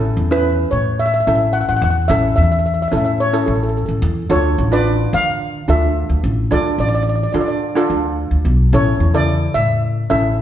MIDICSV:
0, 0, Header, 1, 4, 480
1, 0, Start_track
1, 0, Key_signature, 3, "major"
1, 0, Tempo, 551471
1, 1836, Time_signature, 4, 2, 24, 8
1, 9069, End_track
2, 0, Start_track
2, 0, Title_t, "Steel pan"
2, 0, Program_c, 0, 114
2, 0, Note_on_c, 0, 69, 70
2, 279, Note_on_c, 0, 71, 76
2, 289, Note_off_c, 0, 69, 0
2, 618, Note_on_c, 0, 73, 74
2, 648, Note_off_c, 0, 71, 0
2, 866, Note_on_c, 0, 76, 83
2, 875, Note_off_c, 0, 73, 0
2, 910, Note_off_c, 0, 76, 0
2, 921, Note_on_c, 0, 76, 68
2, 981, Note_off_c, 0, 76, 0
2, 991, Note_on_c, 0, 76, 70
2, 1037, Note_off_c, 0, 76, 0
2, 1048, Note_on_c, 0, 76, 61
2, 1100, Note_off_c, 0, 76, 0
2, 1111, Note_on_c, 0, 76, 68
2, 1167, Note_off_c, 0, 76, 0
2, 1177, Note_on_c, 0, 76, 61
2, 1259, Note_off_c, 0, 76, 0
2, 1331, Note_on_c, 0, 78, 80
2, 1389, Note_off_c, 0, 78, 0
2, 1400, Note_on_c, 0, 78, 60
2, 1457, Note_off_c, 0, 78, 0
2, 1468, Note_on_c, 0, 78, 76
2, 1525, Note_off_c, 0, 78, 0
2, 1536, Note_on_c, 0, 78, 66
2, 1588, Note_off_c, 0, 78, 0
2, 1599, Note_on_c, 0, 78, 72
2, 1647, Note_off_c, 0, 78, 0
2, 1658, Note_on_c, 0, 78, 62
2, 1739, Note_off_c, 0, 78, 0
2, 1811, Note_on_c, 0, 76, 89
2, 2043, Note_off_c, 0, 76, 0
2, 2053, Note_on_c, 0, 76, 80
2, 2105, Note_off_c, 0, 76, 0
2, 2116, Note_on_c, 0, 76, 59
2, 2181, Note_off_c, 0, 76, 0
2, 2192, Note_on_c, 0, 76, 63
2, 2244, Note_off_c, 0, 76, 0
2, 2255, Note_on_c, 0, 76, 51
2, 2304, Note_off_c, 0, 76, 0
2, 2314, Note_on_c, 0, 76, 54
2, 2374, Note_off_c, 0, 76, 0
2, 2385, Note_on_c, 0, 76, 48
2, 2446, Note_off_c, 0, 76, 0
2, 2457, Note_on_c, 0, 76, 63
2, 2496, Note_off_c, 0, 76, 0
2, 2507, Note_on_c, 0, 76, 52
2, 2574, Note_off_c, 0, 76, 0
2, 2585, Note_on_c, 0, 76, 59
2, 2643, Note_off_c, 0, 76, 0
2, 2653, Note_on_c, 0, 76, 60
2, 2726, Note_off_c, 0, 76, 0
2, 2788, Note_on_c, 0, 73, 85
2, 3013, Note_on_c, 0, 69, 64
2, 3014, Note_off_c, 0, 73, 0
2, 3075, Note_off_c, 0, 69, 0
2, 3086, Note_on_c, 0, 69, 46
2, 3151, Note_off_c, 0, 69, 0
2, 3161, Note_on_c, 0, 69, 56
2, 3200, Note_off_c, 0, 69, 0
2, 3210, Note_on_c, 0, 69, 50
2, 3272, Note_off_c, 0, 69, 0
2, 3282, Note_on_c, 0, 69, 51
2, 3350, Note_off_c, 0, 69, 0
2, 3360, Note_on_c, 0, 69, 47
2, 3422, Note_off_c, 0, 69, 0
2, 3752, Note_on_c, 0, 73, 79
2, 4114, Note_on_c, 0, 74, 88
2, 4125, Note_off_c, 0, 73, 0
2, 4448, Note_off_c, 0, 74, 0
2, 4475, Note_on_c, 0, 77, 97
2, 4960, Note_on_c, 0, 76, 79
2, 4969, Note_off_c, 0, 77, 0
2, 5403, Note_off_c, 0, 76, 0
2, 5672, Note_on_c, 0, 74, 90
2, 5909, Note_off_c, 0, 74, 0
2, 5919, Note_on_c, 0, 74, 83
2, 5978, Note_off_c, 0, 74, 0
2, 5995, Note_on_c, 0, 74, 64
2, 6036, Note_off_c, 0, 74, 0
2, 6046, Note_on_c, 0, 74, 65
2, 6107, Note_off_c, 0, 74, 0
2, 6119, Note_on_c, 0, 74, 53
2, 6163, Note_off_c, 0, 74, 0
2, 6173, Note_on_c, 0, 74, 58
2, 6217, Note_off_c, 0, 74, 0
2, 6228, Note_on_c, 0, 74, 48
2, 6286, Note_off_c, 0, 74, 0
2, 6296, Note_on_c, 0, 74, 61
2, 6362, Note_off_c, 0, 74, 0
2, 6377, Note_on_c, 0, 74, 53
2, 6436, Note_off_c, 0, 74, 0
2, 6449, Note_on_c, 0, 74, 62
2, 6503, Note_off_c, 0, 74, 0
2, 6513, Note_on_c, 0, 74, 60
2, 6570, Note_off_c, 0, 74, 0
2, 7611, Note_on_c, 0, 73, 78
2, 7967, Note_on_c, 0, 74, 87
2, 7976, Note_off_c, 0, 73, 0
2, 8298, Note_off_c, 0, 74, 0
2, 8307, Note_on_c, 0, 76, 90
2, 8781, Note_off_c, 0, 76, 0
2, 8791, Note_on_c, 0, 76, 83
2, 9069, Note_off_c, 0, 76, 0
2, 9069, End_track
3, 0, Start_track
3, 0, Title_t, "Steel pan"
3, 0, Program_c, 1, 114
3, 0, Note_on_c, 1, 61, 55
3, 0, Note_on_c, 1, 64, 58
3, 0, Note_on_c, 1, 69, 66
3, 130, Note_off_c, 1, 61, 0
3, 133, Note_off_c, 1, 64, 0
3, 135, Note_off_c, 1, 69, 0
3, 269, Note_on_c, 1, 61, 65
3, 274, Note_on_c, 1, 64, 65
3, 279, Note_on_c, 1, 71, 78
3, 777, Note_off_c, 1, 61, 0
3, 780, Note_off_c, 1, 64, 0
3, 782, Note_off_c, 1, 71, 0
3, 1105, Note_on_c, 1, 61, 59
3, 1111, Note_on_c, 1, 64, 48
3, 1116, Note_on_c, 1, 69, 60
3, 1543, Note_off_c, 1, 61, 0
3, 1546, Note_off_c, 1, 64, 0
3, 1548, Note_off_c, 1, 69, 0
3, 1823, Note_on_c, 1, 61, 62
3, 1829, Note_on_c, 1, 64, 55
3, 1835, Note_on_c, 1, 69, 66
3, 2261, Note_off_c, 1, 61, 0
3, 2265, Note_off_c, 1, 64, 0
3, 2267, Note_off_c, 1, 69, 0
3, 2537, Note_on_c, 1, 61, 61
3, 2547, Note_on_c, 1, 64, 51
3, 2549, Note_on_c, 1, 69, 70
3, 2762, Note_off_c, 1, 61, 0
3, 2767, Note_off_c, 1, 64, 0
3, 2768, Note_off_c, 1, 69, 0
3, 2901, Note_on_c, 1, 61, 62
3, 2903, Note_on_c, 1, 64, 57
3, 2906, Note_on_c, 1, 69, 72
3, 3412, Note_off_c, 1, 61, 0
3, 3412, Note_off_c, 1, 64, 0
3, 3414, Note_off_c, 1, 69, 0
3, 3739, Note_on_c, 1, 62, 59
3, 3743, Note_on_c, 1, 65, 58
3, 3747, Note_on_c, 1, 69, 72
3, 3963, Note_off_c, 1, 62, 0
3, 3965, Note_off_c, 1, 65, 0
3, 3967, Note_off_c, 1, 69, 0
3, 4107, Note_on_c, 1, 62, 66
3, 4112, Note_on_c, 1, 65, 64
3, 4118, Note_on_c, 1, 71, 75
3, 4615, Note_off_c, 1, 62, 0
3, 4617, Note_off_c, 1, 65, 0
3, 4620, Note_off_c, 1, 71, 0
3, 4943, Note_on_c, 1, 62, 61
3, 4950, Note_on_c, 1, 65, 54
3, 4957, Note_on_c, 1, 69, 71
3, 5381, Note_off_c, 1, 62, 0
3, 5384, Note_off_c, 1, 65, 0
3, 5388, Note_off_c, 1, 69, 0
3, 5666, Note_on_c, 1, 62, 66
3, 5673, Note_on_c, 1, 65, 55
3, 5680, Note_on_c, 1, 69, 66
3, 6103, Note_off_c, 1, 62, 0
3, 6106, Note_off_c, 1, 65, 0
3, 6110, Note_off_c, 1, 69, 0
3, 6388, Note_on_c, 1, 62, 60
3, 6394, Note_on_c, 1, 65, 54
3, 6400, Note_on_c, 1, 69, 65
3, 6608, Note_off_c, 1, 62, 0
3, 6611, Note_off_c, 1, 65, 0
3, 6614, Note_off_c, 1, 69, 0
3, 6750, Note_on_c, 1, 62, 74
3, 6758, Note_on_c, 1, 65, 71
3, 6762, Note_on_c, 1, 69, 83
3, 7258, Note_off_c, 1, 62, 0
3, 7262, Note_off_c, 1, 65, 0
3, 7264, Note_off_c, 1, 69, 0
3, 7599, Note_on_c, 1, 61, 59
3, 7601, Note_on_c, 1, 64, 54
3, 7609, Note_on_c, 1, 69, 69
3, 7815, Note_off_c, 1, 61, 0
3, 7816, Note_off_c, 1, 64, 0
3, 7819, Note_off_c, 1, 69, 0
3, 7955, Note_on_c, 1, 49, 65
3, 7961, Note_on_c, 1, 64, 58
3, 7961, Note_on_c, 1, 69, 74
3, 8462, Note_off_c, 1, 49, 0
3, 8465, Note_off_c, 1, 64, 0
3, 8465, Note_off_c, 1, 69, 0
3, 8789, Note_on_c, 1, 61, 63
3, 8794, Note_on_c, 1, 64, 52
3, 8796, Note_on_c, 1, 69, 63
3, 9069, Note_off_c, 1, 61, 0
3, 9069, Note_off_c, 1, 64, 0
3, 9069, Note_off_c, 1, 69, 0
3, 9069, End_track
4, 0, Start_track
4, 0, Title_t, "Upright bass"
4, 0, Program_c, 2, 32
4, 0, Note_on_c, 2, 33, 78
4, 113, Note_off_c, 2, 33, 0
4, 145, Note_on_c, 2, 40, 76
4, 553, Note_off_c, 2, 40, 0
4, 628, Note_on_c, 2, 45, 73
4, 1034, Note_off_c, 2, 45, 0
4, 1106, Note_on_c, 2, 33, 75
4, 1413, Note_off_c, 2, 33, 0
4, 1470, Note_on_c, 2, 33, 72
4, 1573, Note_off_c, 2, 33, 0
4, 1581, Note_on_c, 2, 40, 87
4, 1788, Note_off_c, 2, 40, 0
4, 1823, Note_on_c, 2, 33, 90
4, 2029, Note_off_c, 2, 33, 0
4, 2066, Note_on_c, 2, 40, 75
4, 2473, Note_off_c, 2, 40, 0
4, 2545, Note_on_c, 2, 45, 74
4, 2952, Note_off_c, 2, 45, 0
4, 3026, Note_on_c, 2, 33, 78
4, 3332, Note_off_c, 2, 33, 0
4, 3381, Note_on_c, 2, 33, 73
4, 3487, Note_off_c, 2, 33, 0
4, 3498, Note_on_c, 2, 40, 91
4, 3706, Note_off_c, 2, 40, 0
4, 3739, Note_on_c, 2, 38, 86
4, 3947, Note_off_c, 2, 38, 0
4, 3988, Note_on_c, 2, 33, 79
4, 4394, Note_off_c, 2, 33, 0
4, 4466, Note_on_c, 2, 50, 86
4, 4872, Note_off_c, 2, 50, 0
4, 4947, Note_on_c, 2, 38, 81
4, 5253, Note_off_c, 2, 38, 0
4, 5304, Note_on_c, 2, 38, 74
4, 5408, Note_off_c, 2, 38, 0
4, 5428, Note_on_c, 2, 33, 84
4, 5632, Note_off_c, 2, 33, 0
4, 5671, Note_on_c, 2, 38, 81
4, 5874, Note_off_c, 2, 38, 0
4, 5902, Note_on_c, 2, 33, 74
4, 6311, Note_off_c, 2, 33, 0
4, 6389, Note_on_c, 2, 50, 76
4, 6795, Note_off_c, 2, 50, 0
4, 6874, Note_on_c, 2, 38, 73
4, 7178, Note_off_c, 2, 38, 0
4, 7232, Note_on_c, 2, 38, 69
4, 7334, Note_off_c, 2, 38, 0
4, 7353, Note_on_c, 2, 35, 80
4, 7556, Note_off_c, 2, 35, 0
4, 7596, Note_on_c, 2, 33, 80
4, 7798, Note_off_c, 2, 33, 0
4, 7835, Note_on_c, 2, 40, 77
4, 8240, Note_off_c, 2, 40, 0
4, 8313, Note_on_c, 2, 45, 72
4, 8720, Note_off_c, 2, 45, 0
4, 8799, Note_on_c, 2, 33, 68
4, 9069, Note_off_c, 2, 33, 0
4, 9069, End_track
0, 0, End_of_file